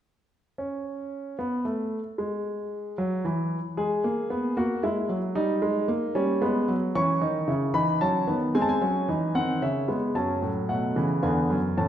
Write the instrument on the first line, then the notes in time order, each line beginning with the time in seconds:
grand piano
0.58 C#4
1.39 B3
1.65 A3
2.18 G#3
2.98 F#3
3.25 E3
3.77 G#3 G#4
4.04 A#3
4.30 B3
4.57 A#3 F#4
4.83 G#3 E4
5.09 F#3
5.35 G3 D#4
5.62 G#3
5.88 A#3
6.15 G3 C#4
6.42 G#3 B3
6.68 F#3
6.95 E3 C#4 C#6
7.21 D#3 D#4
7.48 C#3 E4
7.74 E3 D#4 B5
8.01 F#3 C#4 A5
8.27 D#3 B3
8.55 G#3 C4 G#5
8.62 A5
8.69 G#5
8.82 F#3 C#4
9.09 E3 D#4
9.35 D#3 C4 F#5
9.62 C#3 C#4 E5
9.88 G#3 B3
10.15 F#2 F#3 C#4 A5
10.42 A2
10.69 B2 A3 F#5
10.96 C#3 E3
11.23 E2 D3 B3 G#5
11.50 F#2
11.77 A2 E3 C#4 A5